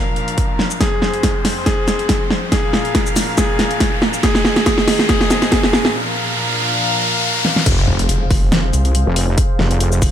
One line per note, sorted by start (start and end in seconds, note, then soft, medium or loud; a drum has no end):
0.00 0.79 A#2 medium
0.00 4.19 F3 medium
0.00 0.79 D4 medium
0.00 0.73 A#4 medium
0.00 0.79 A#4 medium
0.00 0.79 F5 medium
0.00 riser medium
0.16 closed hi-hat soft
0.28 closed hi-hat soft
0.38 kick loud
0.38 closed hi-hat medium
0.59 snare medium
0.71 shaker medium
0.81 2.50 F2 medium
0.81 2.50 C4 medium
0.81 1.37 G#4 medium
0.81 2.50 G#4 medium
0.81 2.50 C5 medium
0.81 kick medium
0.81 snare medium
0.81 closed hi-hat medium
1.02 snare medium
1.14 closed hi-hat soft
1.23 kick loud
1.23 snare medium
1.23 closed hi-hat medium
1.45 snare medium
1.45 open hi-hat medium
1.66 2.23 G#4 medium
1.66 kick loud
1.66 snare medium
1.66 closed hi-hat medium
1.88 snare medium
1.88 closed hi-hat medium
1.88 shaker medium
1.99 closed hi-hat soft
2.09 kick loud
2.09 snare medium
2.09 closed hi-hat medium
2.30 snare medium
2.52 4.22 A#2 medium
2.52 4.22 D4 medium
2.52 3.08 G#4 medium
2.52 4.22 A#4 medium
2.52 4.22 F5 medium
2.52 kick medium
2.52 snare medium
2.52 closed hi-hat medium
2.73 snare medium
2.85 closed hi-hat medium
2.95 kick loud
2.95 snare medium
2.95 closed hi-hat medium
3.06 shaker medium
3.16 snare medium
3.16 open hi-hat medium
3.16 shaker medium
3.38 3.94 G#4 medium
3.38 kick loud
3.38 snare medium
3.38 closed hi-hat medium
3.38 shaker medium
3.59 snare medium
3.59 closed hi-hat medium
3.71 closed hi-hat soft
3.80 kick medium
3.80 snare medium
3.80 closed hi-hat medium
4.02 snare medium
4.13 shaker medium
4.23 5.93 G#2 medium
4.23 5.93 D#3 medium
4.23 5.93 C4 medium
4.23 4.65 G#4 loud
4.23 5.93 G#4 medium
4.23 5.93 D#5 medium
4.23 kick loud
4.23 snare medium
4.23 closed hi-hat medium
4.35 snare medium
4.45 snare medium
4.56 snare medium
4.56 closed hi-hat medium
4.66 5.07 G#4 loud
4.66 kick loud
4.66 snare loud
4.66 closed hi-hat medium
4.78 snare medium
4.88 snare medium
4.88 open hi-hat loud
4.99 snare medium
5.09 5.50 G#4 loud
5.09 kick loud
5.09 snare medium
5.09 closed hi-hat medium
5.21 snare medium
5.30 snare loud
5.30 closed hi-hat soft
5.30 shaker medium
5.42 snare medium
5.42 closed hi-hat medium
5.52 5.93 G#4 medium
5.52 kick loud
5.52 snare loud
5.52 closed hi-hat medium
5.63 snare medium
5.73 snare loud
5.85 snare medium
5.95 7.65 A#2 medium
5.95 7.65 F3 medium
5.95 7.65 D4 medium
5.95 7.65 A#4 medium
5.95 7.65 F5 loud
7.45 snare medium
7.56 snare medium
7.66 8.08 F1 loud
7.66 10.11 G#4 medium
7.66 10.11 C5 medium
7.66 10.11 F5 medium
7.66 kick loud
7.66 closed hi-hat medium
7.66 crash loud
7.66 impact medium
7.88 kick medium
7.99 closed hi-hat medium
8.09 8.29 F1 loud
8.09 closed hi-hat medium
8.30 8.50 F1 loud
8.30 kick loud
8.30 open hi-hat medium
8.52 8.72 F1 loud
8.52 snare loud
8.52 closed hi-hat medium
8.73 9.05 C2 medium
8.73 closed hi-hat medium
8.73 shaker medium
8.85 closed hi-hat medium
8.95 closed hi-hat medium
9.06 9.36 F1 medium
9.16 open hi-hat loud
9.38 kick loud
9.38 closed hi-hat medium
9.59 10.00 F1 loud
9.59 snare medium
9.71 closed hi-hat medium
9.80 closed hi-hat medium
9.92 shaker medium
10.02 10.11 F1 loud
10.02 kick loud
10.02 open hi-hat medium
10.02 shaker medium